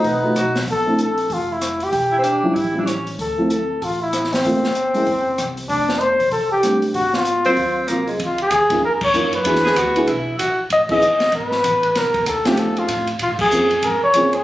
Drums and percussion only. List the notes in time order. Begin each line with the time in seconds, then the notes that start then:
0.04 kick, open hi-hat
0.36 cross-stick, closed hi-hat
0.55 snare, open hi-hat
0.67 kick, open hi-hat
0.99 closed hi-hat
1.18 open hi-hat
1.30 kick, open hi-hat
1.61 cross-stick, closed hi-hat
1.80 open hi-hat
1.93 kick, open hi-hat
2.24 closed hi-hat
2.56 kick, open hi-hat
2.87 cross-stick, closed hi-hat
3.07 open hi-hat
3.19 kick, open hi-hat
3.50 closed hi-hat
3.82 kick, open hi-hat
4.13 cross-stick, closed hi-hat
4.24 snare
4.33 snare, open hi-hat
4.44 kick, open hi-hat
4.64 snare
4.75 closed hi-hat
4.94 open hi-hat
5.07 kick, open hi-hat
5.38 cross-stick, closed hi-hat
5.57 open hi-hat
5.69 kick, open hi-hat
5.89 snare
6.01 closed hi-hat
6.20 open hi-hat
6.31 kick, open hi-hat
6.63 cross-stick, closed hi-hat
6.82 open hi-hat
6.94 kick, open hi-hat
7.13 snare
7.25 closed hi-hat
7.45 open hi-hat
7.57 kick, open hi-hat
7.88 cross-stick, closed hi-hat
8.07 open hi-hat
8.20 kick, ride
8.38 ride
8.51 kick, hi-hat pedal, ride
8.70 kick, ride
8.82 kick
9.01 kick, crash
9.14 hi-hat pedal
9.33 ride
9.45 kick, ride
9.55 snare
9.66 snare
9.76 kick, hi-hat pedal, ride
9.96 ride
10.07 kick, ride
10.39 kick, hi-hat pedal, ride
10.70 kick, ride
10.89 kick, crash
11.01 hi-hat pedal
11.20 snare, ride
11.32 kick, ride
11.52 snare
11.64 kick, hi-hat pedal, ride
11.83 ride
11.95 kick, snare, ride
12.14 kick, ride
12.26 kick, hi-hat pedal, ride
12.45 snare, ride
12.57 kick, ride
12.77 ride
12.88 kick, hi-hat pedal, ride
13.07 ride
13.19 kick, ride
13.39 kick, crash
13.51 hi-hat pedal
13.71 ride
13.83 kick, ride
14.14 kick, hi-hat pedal, ride
14.33 ride